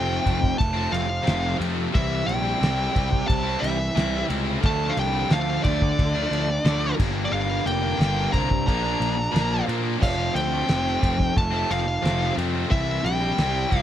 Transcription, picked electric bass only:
Already playing: F1
0.26 F1
0.60 F1
0.93 F1
1.27 F1
1.60 F2
1.95 C2
2.27 A#1
2.61 C2
2.96 C2
3.29 C2
3.63 C2
3.96 C2
4.30 C#2
4.64 D2
4.97 C2
5.30 D2
5.65 D2
5.99 D2
6.31 D2
6.65 D2
7.00 G1
7.32 G1
7.66 F1
7.99 G1
8.34 C2
8.68 A#1
9.00 A#1
9.34 A#1
9.68 A#2
10.02 F1
10.35 D2
10.70 F1
11.03 F1
11.37 F1
11.71 F1
12.04 F1
12.38 F2
12.72 C2
13.04 A#1
13.38 C2
13.72 C2

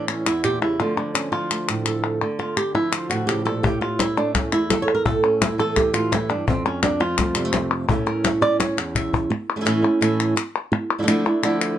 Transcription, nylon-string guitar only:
Already playing: A2 E3
0.08 C#4
0.26 E2 E4
0.44 A#2 G4
0.62 C#3 E4
0.80 D3 F3 A3 F4
0.97 D4
1.14 C#4
1.32 F3 F4
1.51 A3
1.69 A2
1.88 A4
2.22 D3
2.39 F4
2.57 G4
2.75 F3 E4
2.92 F4
3.10 A2 F#4
3.27 C#3 G4
3.45 A#2 A4
3.63 A2 G4
3.81 F4
4.00 E4
4.17 A3 D4
4.35 C#4
4.52 E2 E4
4.70 A4
4.82 C#5
4.95 A#4
5.05 A2 A4
5.24 C#4
5.42 E4
5.58 E3 A4
5.76 G4
5.94 A2 F4
6.12 A2 E4
6.29 G2 D4
6.47 F2 C4
6.66 C#4
6.83 D4
7.00 F3 F4
7.18 A3
7.35 C3 G3
7.45 A3
7.88 A2 C#4 E4 E5
8.06 A#4
8.24 C#5
8.41 C#4 D5
8.60 C#5
8.77 E2
8.95 E5
9.30 muted nylon-string guitar stroke
9.56 E3 A3 C#4 E4
9.61 E3 A3 C#4 E4
9.65 A2 E3 A3 C#4 E4
9.82 A3 C#4 E4
10.01 A2 E3 A3 C#4 E4
10.36 muted nylon-string guitar stroke
10.72 muted nylon-string guitar stroke
10.98 F3 A3 D4 E4
11.03 F3 A3 D4 E4
11.07 D3 F3 A3 D4 E4
11.26 A3 D4 E4
11.43 D3 F3 A3 D4 E4

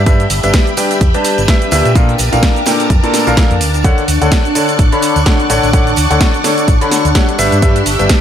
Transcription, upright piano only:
0.07 G3 D4 G4 B4 E5
0.44 G3 D4 G4 B4 E5
0.77 G3 D4 G4 B4 G5
1.15 G3 D4 G4 B4 A5
1.48 G3 D4 G4 B4 E5
1.72 A#2 D4 G4 B4 E5
1.95 A#2 D4 A4 A#4 F5
2.33 A#2 D4 A4 A#4 F5
2.66 A#2 D4 A4 A#4 G5
3.03 A#2 D4 A4 A#4 A5
3.27 A#2 D4 A4 A#4 F5
3.37 A#2 D4 A#4
3.84 D3 D4 A4 C#5 F#5
4.22 D3 D4 A4 C#5 F#5
4.55 D3 D4 A4 C#5 A5
4.92 D3 D4 A4 C#5 B5
5.26 D3 D4 A4 C#5 F#5
5.50 D3 D4 A4 C#5 F#5
5.73 D3 D4 A4 C#5 F#5
6.11 D3 D4 A4 C#5 F#5
6.44 D3 D4 A4 C#5 A5
6.81 D3 D4 A4 C#5 B5
7.15 G3 D4 A4 C#5 F#5
7.39 G3 D4 G4 B4 E5
7.62 G3 D4 G4 B4 E5
8.00 G3 D4 G4 B4 E5

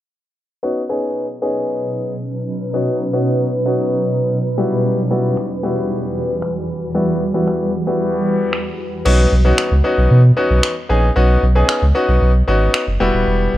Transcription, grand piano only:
0.63 B3 C#4 D#4 F#4
0.89 B3 C#4 D#4 G#4
1.42 B3 C#4 D#4 G#4
2.74 B3 C#4 D#4 F#4
3.13 B3 C#4 D#4 F#4
3.66 B3 C#4 D#4 F#4
4.58 G3 B3 E4 F#4
5.11 G3 B3 E4 F#4
5.63 G3 B3 E4 F#4
6.95 G3 B3 E4 F#4
7.34 G3 B3 E4 F#4
7.87 G3 B3 E4 F#4
9.05 B3 C#4 D#4 F#4
9.45 B3 C#4 D#4 F#4
9.84 B3 C#4 D#4 F#4
10.37 B3 C#4 D#4 F#4
10.89 B3 C#4 D#4 G#4
11.16 B3 C#4 D#4 F#4
11.55 B3 C#4 D#4 G#4
11.95 B3 C#4 D#4 F#4
12.47 B3 C#4 D#4 F#4
13.00 G3 B3 E4 F#4

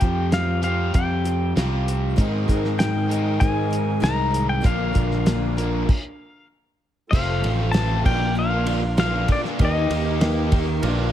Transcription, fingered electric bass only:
0.02 F2
0.95 F2
1.56 C2
2.18 G#2
2.49 G#2
3.42 G#2
4.02 C2
4.65 A#1
4.96 A#1
7.13 F1
7.44 A1
8.06 A#1
9.60 D#2
9.90 D#2
10.83 A#1

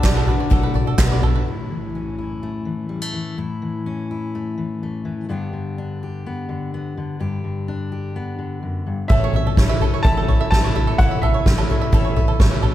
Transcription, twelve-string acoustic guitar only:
0.03 F#3 A3 D4 F#4
0.27 A3 D4 F#4
0.50 B2 F#3 A3 D4 F#4
0.74 A3 D4 F#4
0.98 F#3 A3 D4 F#4
1.22 A3 D4 F#4
9.09 A2 E3 A3 C#4 A4
9.33 A3 C#4 A4
9.57 E3 A3 C#4 A4
9.81 A3 C#4 A4
10.04 A2 E3 A3 C#4 A4
10.29 A3 C#4 A4
10.52 E3 A3 C#4 A4
10.76 A3 C#4 A4
10.99 A2 E3 A3 C#4 A4
11.22 A3 C#4 A4
11.46 E3 A3 C#4 A4
11.70 A3 C#4 A4
11.92 A2 E3 A3 C#4 A4
12.16 A3 C#4 A4
12.40 E3 A3 C#4 A4
12.63 A3 C#4 A4

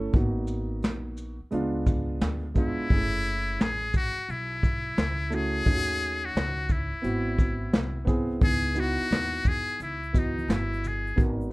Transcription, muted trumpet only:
2.58 E4
3.62 G#4
3.96 F#4
4.31 E4
5.35 G#4
6.25 F#4
6.72 E4
8.43 G#4
8.80 F#4
9.48 G#4
9.82 E4
10.18 D#4
10.53 E4
10.88 G#4

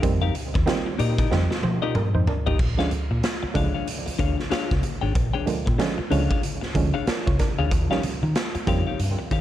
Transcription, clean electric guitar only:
0.22 D#4 G4 A#4 F5
0.35 muted clean electric guitar stroke
0.54 muted clean electric guitar stroke
0.67 muted clean electric guitar stroke
0.86 muted clean electric guitar stroke
0.99 D#4 G4 A#4 D#5
1.18 D#4 G4 A#4 D#5
1.31 muted clean electric guitar stroke
1.51 muted clean electric guitar stroke
1.82 D#4 G4 A#4 D#5
2.15 muted clean electric guitar stroke
2.46 D#4 G4 A#4 D#5
2.79 D4 G#4 C#5 F5
2.91 muted clean electric guitar stroke
3.11 muted clean electric guitar stroke
3.24 muted clean electric guitar stroke
3.43 muted clean electric guitar stroke
3.55 D4 G#4 C#5 F5
3.74 D4 G#4 C#5 F5
4.06 muted clean electric guitar stroke
4.19 D4 G#4 C#5 F5
4.38 muted clean electric guitar stroke
4.50 D4 G#4 C#5 F5
4.82 muted clean electric guitar stroke
5.01 D4 G#4 C#5 G5
5.14 muted clean electric guitar stroke
5.33 D4 G#4 C#5 G5
5.47 muted clean electric guitar stroke
5.66 muted clean electric guitar stroke
5.79 muted clean electric guitar stroke
5.98 muted clean electric guitar stroke
6.11 D4 G#4 C#5 F5
6.30 D4 G#4 C#5 F5
6.43 muted clean electric guitar stroke
6.61 muted clean electric guitar stroke
6.94 D4 G#4 C#5 F5
7.07 muted clean electric guitar stroke
7.26 muted clean electric guitar stroke
7.59 D4 G#4 C#5 F5
7.71 muted clean electric guitar stroke
7.91 D#4 G4 C#5 F5
8.23 muted clean electric guitar stroke
8.36 muted clean electric guitar stroke
8.55 muted clean electric guitar stroke
8.67 D#4 G4 C#5 F5
8.87 D#4 G4 C#5 F5
9.19 muted clean electric guitar stroke
9.31 D#4 G4 C#5 F5

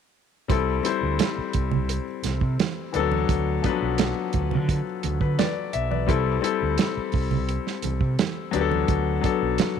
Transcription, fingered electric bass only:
0.50 C2
1.03 D2
1.38 muted fingered electric bass stroke
1.55 C2
2.25 C2
2.42 C3
2.95 D2
3.30 D2
3.82 B1
4.35 D2
4.52 D3
5.05 D2
5.21 D3
5.75 B1
6.09 C2
6.62 D2
6.97 muted fingered electric bass stroke
7.14 C2
7.84 C2
8.01 C3
8.54 D2
8.89 D2
9.42 B1

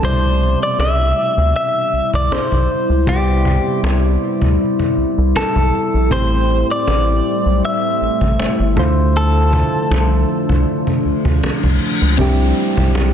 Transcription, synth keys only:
0.02 B2 C3 G3 E4 D5
3.06 C3 G3 B3 E4 C5
3.17 D5
6.10 A2 A3 C4 G4 C5
8.76 D3 A3 E4 F4 C5
12.17 G3 C4 D4 E4 G4

